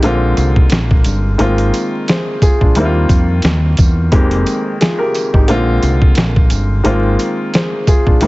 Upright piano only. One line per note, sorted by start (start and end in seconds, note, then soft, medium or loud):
0.00 1.13 D3 medium
0.00 1.13 G#3 medium
0.00 1.13 A#3 medium
0.00 0.21 D#4 medium
0.00 0.20 G4 medium
0.04 1.14 C4 medium
0.04 1.14 F4 loud
1.38 1.85 D#3 medium
1.38 1.86 G#3 medium
1.38 1.86 A#3 medium
1.38 1.86 C4 medium
1.38 1.87 F4 loud
2.09 2.41 G#4 medium
2.09 2.41 C5 medium
2.43 2.59 F4 medium
2.43 2.60 G#4 medium
2.60 2.93 D4 medium
2.60 2.84 F4 medium
2.76 3.86 D#3 medium
2.76 3.86 G3 medium
2.76 3.87 A#3 medium
2.76 3.87 C4 medium
2.76 2.85 E4 medium
2.85 3.90 F4 loud
4.11 4.58 F2 medium
4.11 4.59 D#3 medium
4.11 4.59 G#3 medium
4.11 4.59 A#3 medium
4.11 4.60 C4 medium
4.11 4.60 G4 medium
4.81 4.99 F4 medium
4.81 4.99 G#4 medium
4.99 5.31 G4 medium
4.99 5.31 A#4 medium
5.33 5.66 D#4 medium
5.33 5.66 G4 medium
5.48 6.58 D3 medium
5.48 6.58 G#3 medium
5.48 6.59 A#3 medium
5.48 6.59 C4 medium
5.48 6.59 F4 loud
6.84 7.31 D#3 medium
6.84 7.31 G#3 medium
6.84 7.32 A#3 medium
6.84 7.32 C4 medium
6.84 7.32 F4 medium
7.55 7.87 G#4 medium
7.55 7.86 C5 medium
7.88 8.04 F4 medium
7.88 8.06 G#4 medium
8.06 8.27 D4 medium
8.06 8.27 F4 medium
8.21 8.27 D#3 medium
8.21 8.27 G3 medium
8.21 8.27 A#3 medium
8.21 8.27 C4 medium
8.21 8.27 E4 medium